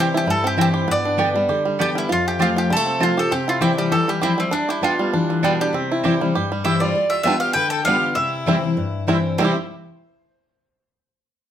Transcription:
Already playing: steel-string acoustic guitar C3 E3 G3 C4, five-string banjo G3 C4 E4 G4
0.00 steel-string acoustic guitar E4, mandolin G4
0.14 five-string banjo E4, mandolin G4
0.26 steel-string acoustic guitar G2, five-string banjo G3
0.30 mandolin A4
0.44 five-string banjo C4, mandolin G4
0.57 steel-string acoustic guitar E3 G3 C4 E4, mandolin C4 E4 C5 G5, five-string banjo E4
0.61 mandolin G4
0.74 five-string banjo G4
0.87 steel-string acoustic guitar G2, five-string banjo B3, mandolin D5
1.05 five-string banjo D4
1.17 steel-string acoustic guitar D3 G3 B3 G4, mandolin B3 G4 D5 G5, five-string banjo G4
1.34 five-string banjo G3, steel-string acoustic guitar B3 G4
1.49 steel-string acoustic guitar D3, five-string banjo G4
1.65 five-string banjo G3
1.79 steel-string acoustic guitar D3 G3 B3 G4, mandolin B3 G4 D5 G5, five-string banjo G4
1.95 five-string banjo G3, mandolin E4
2.09 steel-string acoustic guitar F2, five-string banjo F4, mandolin F4
2.28 mandolin G4
2.39 steel-string acoustic guitar F3 A3 C4 F4, mandolin C4 F4 C5 A5, five-string banjo G4
2.56 five-string banjo F4, mandolin G4
2.70 steel-string acoustic guitar C3, five-string banjo G3, mandolin A4
2.76 five-string banjo A3
2.86 five-string banjo C4
3.00 steel-string acoustic guitar F3 A3 C4 F4, mandolin C4 F4 C5 A5, five-string banjo F4
3.17 steel-string acoustic guitar C4 F4, five-string banjo G4, mandolin A4
3.31 steel-string acoustic guitar C3, five-string banjo C4, mandolin G4
3.48 five-string banjo E4, mandolin F4
3.61 steel-string acoustic guitar E3 G3 C4 E4, mandolin C4 E4 C5 G5, five-string banjo G4
3.78 five-string banjo G3, mandolin G4
3.92 steel-string acoustic guitar E3, five-string banjo G4, mandolin A4
4.08 five-string banjo G3, mandolin G4
4.22 steel-string acoustic guitar F3, mandolin C4 E4 C5 G5, five-string banjo G4
4.38 five-string banjo G3, mandolin C4
4.51 steel-string acoustic guitar G3, five-string banjo D4, mandolin D4
4.69 mandolin E4, five-string banjo G4
4.81 steel-string acoustic guitar G3 B3 F4, mandolin B3 F4 B4 G5, five-string banjo D4
4.99 five-string banjo G3, steel-string acoustic guitar B3 F4
5.13 steel-string acoustic guitar E3, five-string banjo D4
5.30 five-string banjo D3
5.43 steel-string acoustic guitar B2, five-string banjo G3, mandolin B3 D4 F4 B4 G5
5.61 five-string banjo D4, mandolin G4
5.73 steel-string acoustic guitar C3, five-string banjo C4
5.92 five-string banjo E4
6.03 steel-string acoustic guitar E3 G3 C4 E4, mandolin C4 E4 C5 G5, five-string banjo G4
6.20 five-string banjo G3, steel-string acoustic guitar C4 E4
6.35 steel-string acoustic guitar G2, five-string banjo G4
6.52 five-string banjo G3
6.64 steel-string acoustic guitar E3 G3 C4 E4, mandolin C4 E4 C5 E5 G5, fiddle E4, five-string banjo G4
6.80 five-string banjo G3, fiddle F4, mandolin D5
6.95 steel-string acoustic guitar G3
7.10 fiddle F4, mandolin E5
7.23 steel-string acoustic guitar G3 B3 F4, five-string banjo G3 B3, mandolin B3 F4 B4 E5 G5, fiddle F4
7.28 five-string banjo D4
7.40 fiddle G4, mandolin F5
7.53 steel-string acoustic guitar D3, fiddle B4, mandolin G5
7.70 fiddle A4, mandolin G5
7.84 steel-string acoustic guitar G3 B3, five-string banjo G3 B3, mandolin B3 F4 B4 F5 G5, fiddle G4
7.88 five-string banjo D4, steel-string acoustic guitar F4
8.14 steel-string acoustic guitar C3, fiddle E4, mandolin E5
8.46 steel-string acoustic guitar E3 G3 C4 E4, five-string banjo G3 C4 E4, mandolin C4 E4 C5 G5
8.64 steel-string acoustic guitar C4 E4
8.77 steel-string acoustic guitar G2
9.07 steel-string acoustic guitar E3 G3 C4 E4, five-string banjo G3 C4 E4, mandolin C4 E4 C5 G5
9.38 steel-string acoustic guitar C3 E3 G3 C4 E4, five-string banjo G3 C4, mandolin C4 E4 C5 G5, fiddle E4
9.43 five-string banjo E4 G4

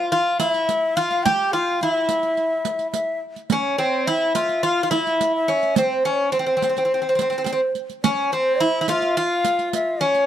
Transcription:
Already playing: bouzouki F4
0.10 bouzouki F4, ney F5
0.40 bouzouki E4, ney F5, riq
0.52 ney E5, riq
0.69 riq
0.96 bouzouki F4, ney F5
1.11 riq
1.23 bouzouki G4, ney G5, riq
1.52 bouzouki F4, ney F5, riq
1.80 bouzouki E4, ney F5, riq
1.92 ney E5
2.09 riq
2.23 riq
2.37 riq
2.65 riq
2.79 riq
2.92 ney E5, riq
3.36 riq
3.50 bouzouki C#4, ney C#5, riq
3.78 bouzouki C4, riq
4.07 bouzouki E4, ney E5, riq
4.35 bouzouki F4, riq
4.49 riq
4.63 bouzouki F4, ney F5
4.83 bouzouki F4
4.90 bouzouki E4, ney E5, riq
5.07 riq
5.21 riq
5.36 ney E5
5.48 bouzouki C#4, riq
5.63 riq
5.76 bouzouki C4, ney C5, riq
6.04 bouzouki C#4, ney C#5, riq
6.32 bouzouki C4, ney C5, riq
6.39 bouzouki C4
6.46 bouzouki C4
6.57 bouzouki C4
6.62 bouzouki C4, riq
6.69 bouzouki C4
6.77 bouzouki C4, riq
6.85 bouzouki C4
6.94 bouzouki C4
7.02 bouzouki C4
7.09 bouzouki C4
7.15 bouzouki C4, riq
7.21 bouzouki C4
7.30 bouzouki C4, riq
7.38 bouzouki C4
7.44 bouzouki C4, ney C5, riq
7.53 bouzouki C4
7.75 riq
7.90 riq
8.03 bouzouki C#4, ney C#5, riq
8.32 bouzouki C4, ney C5, riq
8.60 bouzouki E4, ney E5, riq
8.81 bouzouki E4
8.88 bouzouki F4, riq
9.02 riq
9.17 bouzouki F4, ney F5
9.45 riq
9.59 riq
9.73 ney E5, riq
10.01 bouzouki C#4, ney C#5, riq
10.15 riq

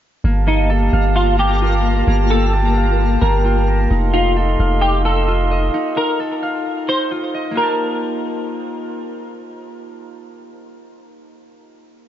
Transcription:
0.24 808-style bass G1, glass harmonica A#3 G4 F5 A5, synth texture A#3 F4 A#4, harp A#3
0.47 harp A#3, clean electric guitar D#4
0.70 harp A4
0.93 808-style bass G1, harp F5
1.16 clean electric guitar F4
1.39 harp A#3, clean electric guitar G4
1.62 harp F4
1.84 harp A#4
2.07 808-style bass G1, harp A#3, glass harmonica G5
2.30 harp A#3, clean electric guitar A4
2.53 harp A5
2.77 harp F5
3.21 808-style bass G1, harp A#3, clean electric guitar A#4
3.45 harp F4
3.68 harp A#4
3.90 808-style bass F1, harp D#4, glass harmonica A4 D#5 F5 C6
4.13 harp D#4, clean electric guitar F4
4.36 harp A4
4.59 808-style bass F1, harp F5
4.81 clean electric guitar G4
5.05 harp D#4, clean electric guitar A4
5.28 harp F4
5.51 harp D#5
5.74 harp D#4
5.97 harp D#4, clean electric guitar A#4
6.20 harp A4
6.43 harp F5
6.88 harp D#4, clean electric guitar C5
7.11 harp F4
7.34 harp D#5
7.51 harp A#3 F4
7.57 harp G4, clean electric guitar A#4
7.63 harp A5

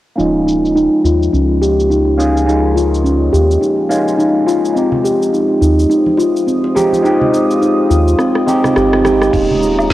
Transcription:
0.16 analog synth bass D#1, singing bowl F3 F4, tine electric piano A#3 C#4 F4, steel tongue drum D#4, cabasa
0.20 tine electric piano G#3
0.47 steel tongue drum D#4, cabasa
0.65 cabasa
0.76 steel tongue drum D#4, cabasa
1.04 analog synth bass D#2, steel tongue drum F4, cabasa
1.23 cabasa
1.33 analog synth bass C#2, steel tongue drum C#4, cabasa
1.61 steel tongue drum G4, cabasa
1.80 cabasa
1.90 steel tongue drum D#4, cabasa
2.17 tine electric piano A#3 C#4 F4 G#4, steel tongue drum D#4, cabasa
2.37 cabasa
2.45 tine electric piano A#3 C#4 F4, steel tongue drum D#4, cabasa
2.49 tine electric piano G#3
2.76 steel tongue drum F4, cabasa
2.94 cabasa
3.04 steel tongue drum C#4, cabasa
3.33 analog synth bass D#2, steel tongue drum G4, cabasa
3.51 cabasa
3.61 steel tongue drum D#4, cabasa
3.89 tine electric piano G#3 A#3 C#4 F4, steel tongue drum D#4, cabasa
4.08 cabasa
4.18 steel tongue drum D#4, cabasa
4.46 tine electric piano A#3 C#4 F4 G#4, steel tongue drum F4, cabasa
4.65 cabasa
4.74 tine electric piano G#3 C4 D#4 G4, steel tongue drum C4, analog synth pad F4 C5 D#6, cabasa
4.92 low conga
5.04 steel tongue drum G4, cabasa
5.22 cabasa
5.33 steel tongue drum D#4, cabasa
5.61 analog synth bass D#2, steel tongue drum D#4, cabasa
5.79 cabasa
5.90 steel tongue drum D#4, cabasa
6.06 high conga
6.17 steel tongue drum F4, high bongo, cabasa
6.36 cabasa
6.47 steel tongue drum C4, cabasa
6.64 high bongo
6.75 tine electric piano G#3 C4 D#4 G4, steel tongue drum G4, high bongo, high conga, cabasa
6.93 high conga, cabasa
7.02 tine electric piano G#3 C4 D#4, steel tongue drum D#4, cabasa
7.06 tine electric piano G4
7.21 high bongo, low conga
7.33 steel tongue drum D#4, cabasa
7.51 cabasa
7.62 steel tongue drum D#4, cabasa
7.90 analog synth bass D#2, steel tongue drum F4, cabasa
8.08 cabasa
8.19 steel tongue drum C4, cross-stick, cabasa
8.35 cross-stick
8.46 tine electric piano G#3 C4 D#4 G4, steel tongue drum C4, high conga, cabasa
8.64 cross-stick, high bongo, low conga, cabasa
8.76 analog synth bass G1, steel tongue drum G4, cross-stick, cabasa
8.93 cross-stick
9.03 tine electric piano G#3 C4 D#4 G4, steel tongue drum G4, cross-stick, high conga, cabasa
9.21 cross-stick, cabasa
9.31 analog synth bass D#1, analog synth pad G#3 C#5 A#5 D#6, tine electric piano G#3 A#3 C#4 F4, steel tongue drum D#4, kick, crash, cabasa
9.51 low conga
9.62 steel tongue drum D#4, cabasa
9.79 cabasa, low woodblock
9.90 steel tongue drum D#4, kick

